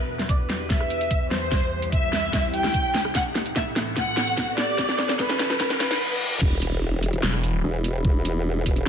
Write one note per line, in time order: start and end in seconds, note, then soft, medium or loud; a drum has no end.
0.00 1.50 E2 medium
0.00 1.50 E3 medium
0.00 1.50 B3 medium
0.00 1.50 G4 medium
0.00 1.50 B4 medium
0.00 riser medium
0.19 snare soft
0.19 closed hi-hat soft
0.29 0.37 D5 medium
0.29 kick medium
0.29 closed hi-hat medium
0.50 snare medium
0.50 closed hi-hat medium
0.70 1.23 E5 medium
0.70 kick medium
0.70 snare medium
0.70 closed hi-hat medium
0.80 cross-stick medium
0.90 closed hi-hat medium
1.01 closed hi-hat medium
1.11 kick medium
1.11 closed hi-hat medium
1.31 1.84 C5 medium
1.31 snare medium
1.52 3.13 C2 medium
1.52 3.13 C3 medium
1.52 3.13 G3 medium
1.52 3.13 E4 medium
1.52 3.13 G4 medium
1.52 kick loud
1.52 snare medium
1.52 closed hi-hat medium
1.82 closed hi-hat medium
1.92 2.46 E5 medium
1.92 kick medium
1.92 closed hi-hat medium
2.13 snare medium
2.13 closed hi-hat medium
2.33 kick medium
2.33 snare medium
2.33 closed hi-hat medium
2.54 3.07 G5 medium
2.54 closed hi-hat medium
2.64 snare medium
2.64 closed hi-hat medium
2.74 kick loud
2.74 closed hi-hat medium
2.94 snare medium
3.05 cross-stick medium
3.15 4.77 A2 medium
3.15 4.77 E3 medium
3.15 4.77 B3 medium
3.15 4.77 C4 medium
3.15 4.77 A4 medium
3.15 3.23 F#5 medium
3.15 kick medium
3.15 snare medium
3.15 closed hi-hat medium
3.35 snare medium
3.46 closed hi-hat medium
3.56 3.64 E5 medium
3.56 kick medium
3.56 snare medium
3.56 closed hi-hat medium
3.76 snare medium
3.76 closed hi-hat medium
3.97 4.50 F#5 medium
3.97 kick medium
3.97 snare medium
3.97 closed hi-hat medium
4.17 snare medium
4.17 closed hi-hat medium
4.27 closed hi-hat medium
4.37 kick loud
4.37 snare medium
4.37 closed hi-hat medium
4.58 5.11 D5 loud
4.58 snare medium
4.78 5.99 D2 medium
4.78 5.99 D3 medium
4.78 5.99 F#3 medium
4.78 5.99 E4 medium
4.78 5.99 A4 medium
4.78 kick medium
4.78 snare medium
4.78 closed hi-hat medium
4.89 snare medium
4.99 snare medium
5.09 snare medium
5.09 closed hi-hat soft
5.19 5.72 B4 medium
5.19 kick loud
5.19 snare medium
5.19 closed hi-hat medium
5.29 snare medium
5.39 snare loud
5.39 closed hi-hat medium
5.50 snare medium
5.60 kick loud
5.60 snare loud
5.60 closed hi-hat medium
5.60 reverse cymbal medium
5.70 snare medium
5.80 6.01 B4 medium
5.80 snare loud
5.80 closed hi-hat medium
5.91 snare loud
5.91 closed hi-hat medium
6.41 7.21 E1 loud
6.41 8.89 E3 medium
6.41 8.89 E4 medium
6.41 8.89 G4 medium
6.41 8.89 B4 medium
6.41 8.89 B5 medium
6.41 kick loud
6.41 crash loud
6.41 sub drop medium
6.62 closed hi-hat medium
7.03 closed hi-hat medium
7.13 closed hi-hat soft
7.23 7.62 E1 medium
7.23 snare loud
7.34 cross-stick medium
7.43 closed hi-hat medium
7.64 8.03 E1 medium
7.84 closed hi-hat medium
8.05 8.85 E1 loud
8.05 kick loud
8.25 closed hi-hat medium
8.66 kick medium
8.66 closed hi-hat medium
8.76 closed hi-hat soft